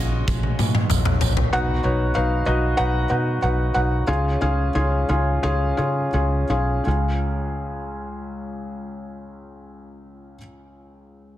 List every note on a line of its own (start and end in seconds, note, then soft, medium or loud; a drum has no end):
0.00 0.22 A#1 loud
0.00 1.48 C#3 soft
0.00 1.48 A#3 soft
0.00 1.48 C#4 medium
0.00 1.55 F4 medium
0.00 1.53 F#4 medium
0.00 1.54 C#5 medium
0.00 1.54 D#5 loud
0.28 0.53 A#1 loud
0.28 kick medium
0.28 high tom medium
0.28 tambourine soft
0.43 high tom medium
0.59 0.85 A#2 medium
0.59 mid tom medium
0.59 tambourine medium
0.75 mid tom medium
0.90 1.16 A#1 loud
0.90 mid tom medium
0.90 tambourine medium
1.05 mid tom medium
1.21 1.48 A#1 medium
1.21 floor tom medium
1.21 tambourine medium
1.37 floor tom loud
1.52 1.79 B1 medium
1.52 2.43 B2 medium
1.52 1.79 D#4 medium
1.52 1.79 F#4 medium
1.52 1.79 B4 medium
1.52 1.79 F#5 loud
1.83 2.10 B1 medium
1.83 2.11 D#4 medium
1.83 2.10 F#4 medium
1.83 2.11 B4 medium
1.83 2.11 C#5 medium
2.15 2.42 B1 medium
2.15 2.42 D#4 medium
2.15 2.42 F#4 medium
2.15 2.42 B4 medium
2.15 2.42 F5 medium
2.46 2.73 B1 medium
2.46 2.74 D#4 medium
2.46 2.74 F#4 medium
2.46 2.74 B4 medium
2.46 2.74 D#5 medium
2.77 3.05 B1 medium
2.77 3.05 D#4 medium
2.77 3.05 F#4 medium
2.77 3.05 B4 medium
2.77 3.05 F#5 loud
3.10 3.37 B2 medium
3.10 3.38 D#4 medium
3.10 3.38 F#4 medium
3.10 3.37 B4 medium
3.10 3.38 F#5 medium
3.42 3.70 B1 medium
3.42 3.70 D#4 medium
3.42 3.70 F#4 medium
3.42 3.70 B4 medium
3.42 3.70 F#5 medium
3.74 4.03 B1 medium
3.74 4.03 D#4 medium
3.74 4.03 F#4 medium
3.74 4.03 B4 medium
3.74 4.03 F#5 medium
4.07 4.35 C#2 medium
4.07 5.04 C#3 medium
4.07 4.36 C#4 medium
4.07 4.36 F4 medium
4.07 4.36 G#4 medium
4.07 4.36 F5 medium
4.41 4.69 C#2 medium
4.41 4.70 C#4 medium
4.41 4.70 F4 medium
4.41 4.70 G#4 medium
4.41 4.70 F5 medium
4.75 5.03 C#2 medium
4.75 5.04 C#4 medium
4.75 5.04 F4 medium
4.75 5.04 G#4 medium
4.75 5.04 F5 medium
5.09 5.37 C#2 medium
5.09 5.38 C#4 medium
5.09 5.38 F4 medium
5.09 5.38 G#4 medium
5.09 5.38 F5 medium
5.43 5.72 C#2 medium
5.43 5.73 C#4 medium
5.43 5.72 F4 medium
5.43 5.73 G#4 medium
5.43 5.73 F5 medium
5.77 6.07 C#3 medium
5.77 6.08 C#4 medium
5.77 6.08 F4 medium
5.77 6.08 G#4 medium
5.77 6.07 F5 medium
6.13 6.43 C#2 medium
6.13 6.44 C#4 medium
6.13 6.44 F4 medium
6.13 6.44 G#4 medium
6.13 6.44 F5 medium
6.50 6.79 B1 medium
6.50 6.80 C#4 medium
6.50 6.80 F4 medium
6.50 6.81 G#4 medium
6.50 6.80 F5 medium
6.84 10.37 C#2 medium
6.84 10.38 C#2 medium
6.84 10.34 C#4 medium
6.84 10.36 F4 soft
6.84 10.37 G#4 medium
6.88 10.39 F5 medium